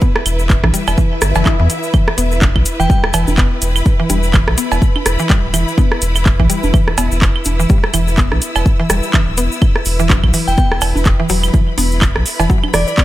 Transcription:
Already playing: string section E4 B4 E5
0.01 synth arpeggio sound B3, kick, shaker
0.16 cross-stick
0.26 sub bass E1, closed hi-hat, claves, shaker
0.39 shaker
0.50 kick, clap, shaker
0.64 sub bass B1, synth arpeggio sound E3, kick, cross-stick, high conga
0.74 synth arpeggio sound G3, closed hi-hat, shaker
0.87 sub bass E1, cowbell, claves, shaker
0.98 synth arpeggio sound E3, kick, swell, shaker
1.21 sub bass G1, cross-stick, closed hi-hat, shaker
1.35 sub bass F#1, synth arpeggio sound E3, cowbell, shaker
1.46 synth arpeggio sound E3, kick, clap, high conga, claves, shaker
1.60 sub bass E2, synth arpeggio sound E3
1.70 closed hi-hat, shaker
1.83 shaker
1.94 synth arpeggio sound E3, kick, claves, shaker
2.08 cross-stick
2.18 sub bass E1, synth arpeggio sound B3, closed hi-hat, shaker
2.32 shaker
2.42 kick, clap, high conga, shaker
2.56 sub bass B1, kick, claves
2.65 closed hi-hat, shaker
2.80 sub bass E1, synth arpeggio sound E3, synth bell G5, shaker
2.90 synth arpeggio sound G3, synth bell G5, kick, shaker
3.04 sub bass E1, cross-stick
3.14 sub bass E1, synth arpeggio sound E3, closed hi-hat, cowbell, claves, shaker
3.28 sub bass E1, string section B5, high conga, shaker
3.38 synth arpeggio sound B3, kick, clap, shaker
3.62 sub bass E1, closed hi-hat, shaker
3.76 claves, shaker
3.86 kick, shaker
4.00 synth arpeggio sound E3
4.10 sub bass E1, synth arpeggio sound G3, closed hi-hat, high conga, shaker
4.23 shaker
4.34 synth arpeggio sound E3, kick, clap, claves, shaker
4.48 sub bass B1, cross-stick
4.58 synth arpeggio sound B3, closed hi-hat, shaker
4.72 sub bass E1, cowbell, shaker
4.82 kick, shaker
4.96 high conga, claves
5.06 sub bass E1, cross-stick, closed hi-hat, shaker
5.19 synth arpeggio sound E3, shaker
5.30 synth arpeggio sound G3, kick, clap, shaker
5.44 sub bass D1
5.54 sub bass E1, synth arpeggio sound E3, closed hi-hat, claves, shaker
5.68 shaker
5.78 synth arpeggio sound B3, kick, high conga, shaker
5.92 cross-stick
6.02 sub bass E1, closed hi-hat, shaker
6.15 claves, shaker
6.26 kick, clap, shaker
6.40 sub bass B1, synth arpeggio sound E3, kick
6.50 synth arpeggio sound G3, closed hi-hat, shaker
6.63 sub bass E1, high conga, shaker
6.74 synth arpeggio sound E3, kick, claves, shaker
6.88 sub bass E1, cross-stick
6.98 sub bass E1, synth arpeggio sound B3, closed hi-hat, cowbell, shaker
7.12 sub bass E1, string section E6, shaker
7.22 kick, clap, shaker
7.36 claves
7.45 sub bass E1, closed hi-hat, high conga, shaker
7.60 synth arpeggio sound E3, shaker
7.69 synth arpeggio sound G3, kick, shaker
7.84 cross-stick
7.94 sub bass E1, synth arpeggio sound E3, closed hi-hat, claves, shaker
8.08 shaker
8.18 synth arpeggio sound B3, kick, clap, shaker
8.32 sub bass B1, cross-stick, high conga
8.42 closed hi-hat, shaker
8.56 sub bass E1, cowbell, claves, shaker
8.66 kick, shaker
8.80 synth arpeggio sound E3
8.90 sub bass E1, synth arpeggio sound G3, cross-stick, closed hi-hat, shaker
9.03 shaker
9.14 synth arpeggio sound E3, kick, clap, high conga, claves, shaker
9.28 sub bass D1
9.37 sub bass E1, synth arpeggio sound B3, closed hi-hat, shaker
9.52 shaker
9.62 kick, claves, shaker
9.76 cross-stick
9.85 sub bass E1, open hi-hat, shaker
9.99 synth arpeggio sound E3, shaker
10.10 synth arpeggio sound F#3, kick, clap, high conga, shaker
10.24 sub bass B1, kick, claves
10.34 synth arpeggio sound E3, open hi-hat, shaker
10.48 sub bass E1, synth bell G5, shaker
10.58 synth arpeggio sound B3, synth bell G5, kick, shaker
10.72 sub bass E1, cross-stick
10.81 sub bass E1, open hi-hat, cowbell, claves, shaker
10.96 sub bass E1, string section B5, high conga, shaker
11.05 kick, clap, shaker
11.20 synth arpeggio sound E3
11.29 sub bass E1, synth arpeggio sound F#3, open hi-hat, shaker
11.43 claves, shaker
11.54 synth arpeggio sound E3, kick, shaker
11.78 sub bass E1, synth arpeggio sound B3, open hi-hat, high conga, shaker
11.91 shaker
12.02 kick, clap, claves, shaker
12.16 sub bass B1, cross-stick
12.26 open hi-hat, shaker
12.40 sub bass E1, synth arpeggio sound E3, cowbell, shaker
12.50 synth arpeggio sound F#3, kick, shaker
12.64 high conga, claves
12.74 sub bass E1, synth arpeggio sound E3, synth bell D5, cross-stick, open hi-hat, shaker
12.87 synth bell D5, shaker
12.98 synth arpeggio sound B3, kick, clap, shaker

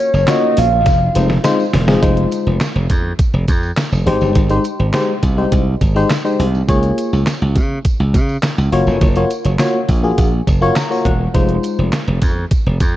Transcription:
Already playing: fm electric piano A#3 C#4 F4 F#4 C#5, soft synth lead C#5
0.14 slap bass F#1, tambourine
0.27 fm electric piano A#3 C#4 F4 F#4 C#5, soft synth lead D#5, snare, clap, closed hi-hat, tambourine
0.57 slap bass A#1, soft synth lead F5, open hi-hat, tambourine
0.86 slap bass F1, kick, snare, closed hi-hat, tambourine
1.15 slap bass F1, fm electric piano G#3 C4 D#4 F4 C5, closed hi-hat, tambourine
1.30 snare
1.44 fm electric piano G#3 C4 D#4 F4 C5, snare, closed hi-hat, tambourine
1.60 tambourine
1.73 slap bass E1, snare, open hi-hat
1.87 fm electric piano G#3 C4 D#4 F4 G#4, snare
2.02 slap bass F1, fm electric piano G#3 D#4 F4 C5, kick, closed hi-hat, tambourine
2.17 closed hi-hat
2.31 closed hi-hat, tambourine
2.47 slap bass F1
2.60 snare, clap, closed hi-hat, tambourine
2.75 slap bass F1
2.90 slap bass F2, kick, closed hi-hat, tambourine
3.19 kick, closed hi-hat, tambourine
3.33 slap bass F1
3.48 slap bass F2, kick, closed hi-hat, tambourine
3.63 tambourine
3.77 snare, clap, closed hi-hat, tambourine
3.92 slap bass F1, tambourine
4.06 slap bass G#1, fm electric piano G#3 D#4 G4 C5, open hi-hat
4.21 slap bass G1, tambourine
4.35 slap bass G#1, kick, closed hi-hat, tambourine
4.49 fm electric piano G#3 D#4 G4 C5, closed hi-hat, tambourine
4.64 closed hi-hat, tambourine
4.79 slap bass G#1, fm electric piano G4 C5
4.93 fm electric piano G#3 D#4 G4 C5, snare, clap, closed hi-hat, tambourine
5.23 slap bass C2, kick, closed hi-hat, tambourine
5.37 fm electric piano G#3 D#4 G4 C5
5.52 slap bass C2, kick, closed hi-hat, tambourine
5.81 slap bass G#1, kick, closed hi-hat, tambourine
5.96 fm electric piano G#3 D#4 G4 C5, tambourine
6.10 snare, clap, closed hi-hat, tambourine
6.24 fm electric piano G#3 D#4 G4 C5, tambourine
6.39 slap bass C2, open hi-hat
6.55 tambourine
6.68 slap bass C#2, fm electric piano A#3 F4 G#4 C#5, kick, closed hi-hat, tambourine
6.83 closed hi-hat, tambourine
6.98 closed hi-hat, tambourine
7.13 slap bass C#2, tambourine
7.26 snare, clap, closed hi-hat, tambourine
7.42 slap bass C#2
7.56 slap bass C#3, kick, closed hi-hat, tambourine
7.85 kick, closed hi-hat, tambourine
8.00 slap bass C#2
8.14 slap bass C#3, kick, closed hi-hat, tambourine
8.29 tambourine
8.43 snare, clap, closed hi-hat, tambourine
8.58 slap bass C#2, tambourine
8.72 slap bass F#1, fm electric piano A#3 F4 F#4 C#5, open hi-hat
8.87 slap bass F1, tambourine
9.01 slap bass F#1, kick, closed hi-hat, tambourine
9.15 fm electric piano A#3 F4 F#4 C#5, closed hi-hat, tambourine
9.30 closed hi-hat, tambourine
9.45 slap bass F#1, fm electric piano F#4 C#5, closed hi-hat, tambourine
9.59 fm electric piano A#3 F4 F#4 C#5, snare, clap, closed hi-hat, tambourine
9.89 slap bass A#1, kick, open hi-hat, tambourine
10.03 fm electric piano A#3 F4 F#4 G#4
10.18 slap bass A#1, kick, closed hi-hat, tambourine
10.47 slap bass F#1, kick, closed hi-hat, tambourine
10.61 fm electric piano A#3 F4 F#4 C#5, tambourine
10.76 fm electric piano A#5, snare, clap, closed hi-hat, tambourine
10.90 fm electric piano A#3 F4 F#4 C#5, tambourine
11.05 slap bass E1, fm electric piano F#5, kick, closed hi-hat
11.34 slap bass F1, fm electric piano G#3 D#4 F4 C5, kick, closed hi-hat, tambourine
11.49 closed hi-hat
11.63 closed hi-hat, tambourine
11.79 slap bass F1
11.92 snare, clap, closed hi-hat, tambourine
12.08 slap bass F1
12.22 slap bass F2, kick, closed hi-hat, tambourine
12.51 kick, closed hi-hat, tambourine
12.66 slap bass F1
12.80 slap bass F2, kick, closed hi-hat, tambourine

